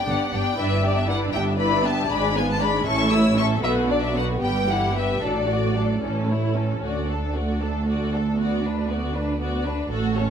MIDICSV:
0, 0, Header, 1, 6, 480
1, 0, Start_track
1, 0, Key_signature, 2, "major"
1, 0, Tempo, 506757
1, 553, Time_signature, 6, 3, 24, 8
1, 2953, Tempo, 530973
1, 6313, Tempo, 510638
1, 9571, End_track
2, 0, Start_track
2, 0, Title_t, "Violin section"
2, 0, Program_c, 0, 48
2, 100, Note_on_c, 0, 78, 48
2, 326, Note_off_c, 0, 78, 0
2, 328, Note_on_c, 0, 79, 55
2, 561, Note_off_c, 0, 79, 0
2, 566, Note_on_c, 0, 76, 62
2, 798, Note_off_c, 0, 76, 0
2, 811, Note_on_c, 0, 74, 53
2, 918, Note_off_c, 0, 74, 0
2, 921, Note_on_c, 0, 76, 50
2, 1032, Note_on_c, 0, 78, 61
2, 1034, Note_off_c, 0, 76, 0
2, 1108, Note_off_c, 0, 78, 0
2, 1266, Note_on_c, 0, 79, 64
2, 1342, Note_off_c, 0, 79, 0
2, 1507, Note_on_c, 0, 83, 61
2, 1747, Note_off_c, 0, 83, 0
2, 1753, Note_on_c, 0, 81, 62
2, 1994, Note_off_c, 0, 81, 0
2, 2001, Note_on_c, 0, 83, 69
2, 2236, Note_off_c, 0, 83, 0
2, 2241, Note_on_c, 0, 80, 62
2, 2356, Note_off_c, 0, 80, 0
2, 2368, Note_on_c, 0, 81, 60
2, 2477, Note_off_c, 0, 81, 0
2, 2481, Note_on_c, 0, 83, 66
2, 2713, Note_on_c, 0, 85, 72
2, 2716, Note_off_c, 0, 83, 0
2, 2949, Note_off_c, 0, 85, 0
2, 2951, Note_on_c, 0, 88, 67
2, 3185, Note_on_c, 0, 85, 69
2, 3186, Note_off_c, 0, 88, 0
2, 3258, Note_off_c, 0, 85, 0
2, 3421, Note_on_c, 0, 76, 70
2, 3494, Note_off_c, 0, 76, 0
2, 3651, Note_on_c, 0, 74, 52
2, 3772, Note_off_c, 0, 74, 0
2, 3781, Note_on_c, 0, 76, 50
2, 3899, Note_off_c, 0, 76, 0
2, 3901, Note_on_c, 0, 78, 55
2, 3974, Note_off_c, 0, 78, 0
2, 4134, Note_on_c, 0, 79, 58
2, 4369, Note_off_c, 0, 79, 0
2, 4387, Note_on_c, 0, 78, 52
2, 4622, Note_off_c, 0, 78, 0
2, 4622, Note_on_c, 0, 76, 47
2, 4858, Note_off_c, 0, 76, 0
2, 4872, Note_on_c, 0, 74, 49
2, 5597, Note_off_c, 0, 74, 0
2, 6324, Note_on_c, 0, 74, 31
2, 6546, Note_off_c, 0, 74, 0
2, 6568, Note_on_c, 0, 69, 30
2, 6808, Note_off_c, 0, 69, 0
2, 6808, Note_on_c, 0, 74, 30
2, 7049, Note_off_c, 0, 74, 0
2, 7054, Note_on_c, 0, 69, 31
2, 7294, Note_off_c, 0, 69, 0
2, 7296, Note_on_c, 0, 74, 29
2, 7519, Note_off_c, 0, 74, 0
2, 7546, Note_on_c, 0, 69, 31
2, 7781, Note_off_c, 0, 69, 0
2, 7787, Note_on_c, 0, 74, 37
2, 8003, Note_off_c, 0, 74, 0
2, 8034, Note_on_c, 0, 71, 33
2, 8243, Note_on_c, 0, 74, 37
2, 8259, Note_off_c, 0, 71, 0
2, 8479, Note_on_c, 0, 71, 39
2, 8480, Note_off_c, 0, 74, 0
2, 8716, Note_off_c, 0, 71, 0
2, 8727, Note_on_c, 0, 74, 35
2, 8943, Note_off_c, 0, 74, 0
2, 8964, Note_on_c, 0, 71, 39
2, 9192, Note_on_c, 0, 69, 47
2, 9198, Note_off_c, 0, 71, 0
2, 9416, Note_off_c, 0, 69, 0
2, 9440, Note_on_c, 0, 73, 39
2, 9571, Note_off_c, 0, 73, 0
2, 9571, End_track
3, 0, Start_track
3, 0, Title_t, "Violin section"
3, 0, Program_c, 1, 48
3, 77, Note_on_c, 1, 67, 40
3, 81, Note_on_c, 1, 74, 40
3, 299, Note_off_c, 1, 67, 0
3, 299, Note_off_c, 1, 74, 0
3, 310, Note_on_c, 1, 74, 38
3, 311, Note_on_c, 1, 67, 41
3, 542, Note_off_c, 1, 74, 0
3, 547, Note_off_c, 1, 67, 0
3, 549, Note_on_c, 1, 71, 43
3, 553, Note_on_c, 1, 74, 41
3, 773, Note_off_c, 1, 71, 0
3, 775, Note_off_c, 1, 74, 0
3, 778, Note_on_c, 1, 76, 36
3, 779, Note_on_c, 1, 67, 37
3, 1019, Note_on_c, 1, 71, 40
3, 1022, Note_off_c, 1, 67, 0
3, 1022, Note_off_c, 1, 76, 0
3, 1023, Note_on_c, 1, 74, 39
3, 1253, Note_on_c, 1, 76, 42
3, 1261, Note_on_c, 1, 67, 45
3, 1263, Note_off_c, 1, 71, 0
3, 1265, Note_off_c, 1, 74, 0
3, 1488, Note_on_c, 1, 74, 44
3, 1494, Note_on_c, 1, 71, 40
3, 1502, Note_off_c, 1, 76, 0
3, 1506, Note_off_c, 1, 67, 0
3, 1725, Note_off_c, 1, 74, 0
3, 1727, Note_off_c, 1, 71, 0
3, 1742, Note_on_c, 1, 76, 43
3, 1743, Note_on_c, 1, 67, 39
3, 1981, Note_on_c, 1, 74, 46
3, 1983, Note_on_c, 1, 68, 45
3, 1989, Note_off_c, 1, 67, 0
3, 1989, Note_off_c, 1, 76, 0
3, 2209, Note_off_c, 1, 74, 0
3, 2211, Note_off_c, 1, 68, 0
3, 2224, Note_on_c, 1, 65, 40
3, 2226, Note_on_c, 1, 71, 42
3, 2467, Note_off_c, 1, 65, 0
3, 2467, Note_on_c, 1, 74, 43
3, 2468, Note_off_c, 1, 71, 0
3, 2469, Note_on_c, 1, 68, 40
3, 2706, Note_on_c, 1, 76, 45
3, 2709, Note_off_c, 1, 74, 0
3, 2709, Note_on_c, 1, 69, 49
3, 2710, Note_off_c, 1, 68, 0
3, 2933, Note_off_c, 1, 76, 0
3, 2935, Note_off_c, 1, 69, 0
3, 2951, Note_on_c, 1, 64, 44
3, 2953, Note_on_c, 1, 73, 42
3, 3185, Note_off_c, 1, 64, 0
3, 3187, Note_off_c, 1, 73, 0
3, 3193, Note_on_c, 1, 76, 41
3, 3194, Note_on_c, 1, 69, 41
3, 3425, Note_on_c, 1, 71, 45
3, 3426, Note_off_c, 1, 76, 0
3, 3426, Note_on_c, 1, 66, 42
3, 3427, Note_off_c, 1, 69, 0
3, 3645, Note_off_c, 1, 71, 0
3, 3646, Note_off_c, 1, 66, 0
3, 3668, Note_on_c, 1, 62, 38
3, 3674, Note_on_c, 1, 74, 40
3, 3899, Note_on_c, 1, 66, 39
3, 3901, Note_on_c, 1, 71, 39
3, 3902, Note_off_c, 1, 62, 0
3, 3905, Note_off_c, 1, 74, 0
3, 4121, Note_off_c, 1, 71, 0
3, 4128, Note_on_c, 1, 67, 39
3, 4132, Note_on_c, 1, 71, 38
3, 4136, Note_off_c, 1, 66, 0
3, 4354, Note_off_c, 1, 67, 0
3, 4356, Note_off_c, 1, 71, 0
3, 4373, Note_on_c, 1, 67, 37
3, 4378, Note_on_c, 1, 64, 37
3, 4599, Note_off_c, 1, 67, 0
3, 4610, Note_on_c, 1, 67, 34
3, 4612, Note_on_c, 1, 71, 34
3, 4618, Note_off_c, 1, 64, 0
3, 4848, Note_on_c, 1, 69, 34
3, 4852, Note_off_c, 1, 69, 0
3, 4852, Note_on_c, 1, 69, 34
3, 4857, Note_off_c, 1, 67, 0
3, 4858, Note_off_c, 1, 71, 0
3, 5083, Note_off_c, 1, 69, 0
3, 5092, Note_on_c, 1, 74, 30
3, 5095, Note_on_c, 1, 66, 30
3, 5342, Note_off_c, 1, 74, 0
3, 5344, Note_off_c, 1, 66, 0
3, 5346, Note_on_c, 1, 69, 31
3, 5348, Note_off_c, 1, 69, 0
3, 5348, Note_on_c, 1, 69, 29
3, 5579, Note_off_c, 1, 69, 0
3, 5590, Note_on_c, 1, 69, 31
3, 5594, Note_on_c, 1, 61, 34
3, 5816, Note_off_c, 1, 69, 0
3, 5817, Note_off_c, 1, 61, 0
3, 5825, Note_on_c, 1, 73, 31
3, 5833, Note_on_c, 1, 64, 32
3, 6057, Note_on_c, 1, 61, 28
3, 6063, Note_on_c, 1, 69, 29
3, 6071, Note_off_c, 1, 73, 0
3, 6075, Note_off_c, 1, 64, 0
3, 6301, Note_on_c, 1, 66, 29
3, 6304, Note_off_c, 1, 61, 0
3, 6307, Note_off_c, 1, 69, 0
3, 6534, Note_off_c, 1, 66, 0
3, 6541, Note_on_c, 1, 69, 28
3, 6782, Note_on_c, 1, 66, 31
3, 6795, Note_off_c, 1, 69, 0
3, 7035, Note_on_c, 1, 69, 34
3, 7036, Note_off_c, 1, 66, 0
3, 7280, Note_on_c, 1, 66, 34
3, 7284, Note_off_c, 1, 69, 0
3, 7511, Note_off_c, 1, 66, 0
3, 7527, Note_on_c, 1, 69, 33
3, 7769, Note_on_c, 1, 66, 35
3, 7772, Note_off_c, 1, 69, 0
3, 7993, Note_off_c, 1, 66, 0
3, 8018, Note_on_c, 1, 62, 33
3, 8251, Note_off_c, 1, 62, 0
3, 8255, Note_on_c, 1, 66, 39
3, 8486, Note_off_c, 1, 66, 0
3, 8497, Note_on_c, 1, 62, 43
3, 8725, Note_off_c, 1, 62, 0
3, 8728, Note_on_c, 1, 66, 38
3, 8943, Note_off_c, 1, 66, 0
3, 8961, Note_on_c, 1, 62, 43
3, 9196, Note_off_c, 1, 62, 0
3, 9207, Note_on_c, 1, 66, 43
3, 9424, Note_off_c, 1, 66, 0
3, 9447, Note_on_c, 1, 69, 41
3, 9571, Note_off_c, 1, 69, 0
3, 9571, End_track
4, 0, Start_track
4, 0, Title_t, "Viola section"
4, 0, Program_c, 2, 48
4, 61, Note_on_c, 2, 59, 36
4, 62, Note_on_c, 2, 62, 36
4, 288, Note_off_c, 2, 59, 0
4, 290, Note_off_c, 2, 62, 0
4, 300, Note_on_c, 2, 59, 36
4, 301, Note_on_c, 2, 62, 37
4, 537, Note_off_c, 2, 62, 0
4, 542, Note_off_c, 2, 59, 0
4, 548, Note_on_c, 2, 62, 42
4, 549, Note_on_c, 2, 64, 40
4, 772, Note_off_c, 2, 62, 0
4, 773, Note_off_c, 2, 64, 0
4, 807, Note_on_c, 2, 59, 38
4, 809, Note_on_c, 2, 62, 37
4, 1027, Note_off_c, 2, 62, 0
4, 1035, Note_on_c, 2, 64, 39
4, 1036, Note_off_c, 2, 59, 0
4, 1038, Note_on_c, 2, 62, 39
4, 1257, Note_off_c, 2, 62, 0
4, 1268, Note_on_c, 2, 62, 41
4, 1271, Note_off_c, 2, 64, 0
4, 1274, Note_on_c, 2, 59, 38
4, 1505, Note_off_c, 2, 62, 0
4, 1513, Note_off_c, 2, 59, 0
4, 1516, Note_on_c, 2, 62, 41
4, 1519, Note_on_c, 2, 64, 41
4, 1740, Note_off_c, 2, 62, 0
4, 1741, Note_off_c, 2, 64, 0
4, 1761, Note_on_c, 2, 59, 44
4, 1764, Note_on_c, 2, 62, 40
4, 1989, Note_off_c, 2, 62, 0
4, 1999, Note_off_c, 2, 59, 0
4, 2001, Note_on_c, 2, 56, 45
4, 2001, Note_on_c, 2, 62, 42
4, 2220, Note_off_c, 2, 56, 0
4, 2220, Note_off_c, 2, 62, 0
4, 2238, Note_on_c, 2, 59, 38
4, 2243, Note_off_c, 2, 59, 0
4, 2243, Note_on_c, 2, 59, 38
4, 2466, Note_on_c, 2, 56, 44
4, 2470, Note_on_c, 2, 62, 44
4, 2477, Note_off_c, 2, 59, 0
4, 2709, Note_off_c, 2, 56, 0
4, 2709, Note_on_c, 2, 61, 45
4, 2711, Note_off_c, 2, 62, 0
4, 2711, Note_on_c, 2, 52, 45
4, 2935, Note_off_c, 2, 61, 0
4, 2936, Note_off_c, 2, 52, 0
4, 2949, Note_on_c, 2, 64, 44
4, 2950, Note_on_c, 2, 57, 41
4, 3180, Note_on_c, 2, 61, 41
4, 3183, Note_on_c, 2, 52, 42
4, 3185, Note_off_c, 2, 57, 0
4, 3185, Note_off_c, 2, 64, 0
4, 3414, Note_on_c, 2, 50, 47
4, 3417, Note_on_c, 2, 59, 47
4, 3420, Note_off_c, 2, 61, 0
4, 3421, Note_off_c, 2, 52, 0
4, 3639, Note_off_c, 2, 50, 0
4, 3641, Note_off_c, 2, 59, 0
4, 3642, Note_on_c, 2, 54, 40
4, 3647, Note_on_c, 2, 62, 39
4, 3884, Note_on_c, 2, 59, 40
4, 3888, Note_off_c, 2, 54, 0
4, 3889, Note_on_c, 2, 50, 35
4, 3891, Note_off_c, 2, 62, 0
4, 4102, Note_off_c, 2, 59, 0
4, 4111, Note_on_c, 2, 55, 38
4, 4113, Note_on_c, 2, 59, 37
4, 4131, Note_off_c, 2, 50, 0
4, 4338, Note_off_c, 2, 55, 0
4, 4346, Note_off_c, 2, 59, 0
4, 4346, Note_on_c, 2, 52, 35
4, 4349, Note_on_c, 2, 55, 34
4, 4592, Note_off_c, 2, 55, 0
4, 4602, Note_off_c, 2, 52, 0
4, 4602, Note_on_c, 2, 59, 35
4, 4603, Note_on_c, 2, 55, 33
4, 4845, Note_on_c, 2, 62, 35
4, 4846, Note_on_c, 2, 54, 37
4, 4853, Note_off_c, 2, 59, 0
4, 4854, Note_off_c, 2, 55, 0
4, 5079, Note_off_c, 2, 62, 0
4, 5080, Note_off_c, 2, 54, 0
4, 5090, Note_on_c, 2, 57, 31
4, 5095, Note_on_c, 2, 66, 31
4, 5337, Note_on_c, 2, 54, 29
4, 5339, Note_on_c, 2, 62, 32
4, 5341, Note_off_c, 2, 57, 0
4, 5343, Note_off_c, 2, 66, 0
4, 5570, Note_on_c, 2, 61, 32
4, 5573, Note_on_c, 2, 52, 31
4, 5585, Note_off_c, 2, 54, 0
4, 5586, Note_off_c, 2, 62, 0
4, 5805, Note_off_c, 2, 61, 0
4, 5806, Note_off_c, 2, 52, 0
4, 5813, Note_on_c, 2, 64, 28
4, 5814, Note_on_c, 2, 57, 28
4, 6065, Note_off_c, 2, 57, 0
4, 6065, Note_off_c, 2, 64, 0
4, 6066, Note_on_c, 2, 52, 28
4, 6068, Note_on_c, 2, 61, 30
4, 6307, Note_on_c, 2, 57, 31
4, 6309, Note_off_c, 2, 52, 0
4, 6310, Note_off_c, 2, 61, 0
4, 6537, Note_off_c, 2, 57, 0
4, 6540, Note_on_c, 2, 62, 28
4, 6794, Note_off_c, 2, 62, 0
4, 6800, Note_on_c, 2, 57, 29
4, 7043, Note_on_c, 2, 62, 30
4, 7046, Note_off_c, 2, 57, 0
4, 7286, Note_on_c, 2, 57, 32
4, 7288, Note_off_c, 2, 62, 0
4, 7514, Note_off_c, 2, 57, 0
4, 7531, Note_on_c, 2, 62, 31
4, 7764, Note_on_c, 2, 59, 35
4, 7774, Note_off_c, 2, 62, 0
4, 7991, Note_off_c, 2, 59, 0
4, 8006, Note_on_c, 2, 62, 34
4, 8242, Note_on_c, 2, 59, 36
4, 8245, Note_off_c, 2, 62, 0
4, 8480, Note_off_c, 2, 59, 0
4, 8481, Note_on_c, 2, 62, 35
4, 8712, Note_on_c, 2, 59, 35
4, 8717, Note_off_c, 2, 62, 0
4, 8935, Note_off_c, 2, 59, 0
4, 8949, Note_on_c, 2, 62, 40
4, 9190, Note_off_c, 2, 62, 0
4, 9200, Note_on_c, 2, 57, 41
4, 9420, Note_off_c, 2, 57, 0
4, 9445, Note_on_c, 2, 61, 38
4, 9571, Note_off_c, 2, 61, 0
4, 9571, End_track
5, 0, Start_track
5, 0, Title_t, "Cello section"
5, 0, Program_c, 3, 48
5, 66, Note_on_c, 3, 43, 41
5, 142, Note_off_c, 3, 43, 0
5, 309, Note_on_c, 3, 43, 42
5, 385, Note_off_c, 3, 43, 0
5, 547, Note_on_c, 3, 43, 51
5, 1179, Note_off_c, 3, 43, 0
5, 1269, Note_on_c, 3, 43, 46
5, 1910, Note_off_c, 3, 43, 0
5, 1993, Note_on_c, 3, 44, 51
5, 2626, Note_off_c, 3, 44, 0
5, 2708, Note_on_c, 3, 45, 56
5, 3337, Note_off_c, 3, 45, 0
5, 3417, Note_on_c, 3, 47, 53
5, 4048, Note_off_c, 3, 47, 0
5, 4130, Note_on_c, 3, 43, 44
5, 4771, Note_off_c, 3, 43, 0
5, 4855, Note_on_c, 3, 45, 42
5, 5503, Note_off_c, 3, 45, 0
5, 5587, Note_on_c, 3, 45, 40
5, 6228, Note_off_c, 3, 45, 0
5, 6311, Note_on_c, 3, 38, 35
5, 9154, Note_off_c, 3, 38, 0
5, 9192, Note_on_c, 3, 45, 48
5, 9571, Note_off_c, 3, 45, 0
5, 9571, End_track
6, 0, Start_track
6, 0, Title_t, "Double bass section"
6, 0, Program_c, 4, 48
6, 74, Note_on_c, 4, 31, 47
6, 150, Note_off_c, 4, 31, 0
6, 317, Note_on_c, 4, 31, 44
6, 393, Note_off_c, 4, 31, 0
6, 556, Note_on_c, 4, 31, 41
6, 1184, Note_off_c, 4, 31, 0
6, 1268, Note_on_c, 4, 31, 54
6, 1909, Note_off_c, 4, 31, 0
6, 1998, Note_on_c, 4, 32, 50
6, 2629, Note_off_c, 4, 32, 0
6, 2712, Note_on_c, 4, 33, 54
6, 3340, Note_off_c, 4, 33, 0
6, 3420, Note_on_c, 4, 35, 48
6, 4050, Note_off_c, 4, 35, 0
6, 4139, Note_on_c, 4, 31, 47
6, 4776, Note_off_c, 4, 31, 0
6, 4863, Note_on_c, 4, 33, 33
6, 5507, Note_off_c, 4, 33, 0
6, 5590, Note_on_c, 4, 33, 38
6, 6229, Note_off_c, 4, 33, 0
6, 6314, Note_on_c, 4, 38, 30
6, 9155, Note_off_c, 4, 38, 0
6, 9198, Note_on_c, 4, 33, 39
6, 9571, Note_off_c, 4, 33, 0
6, 9571, End_track
0, 0, End_of_file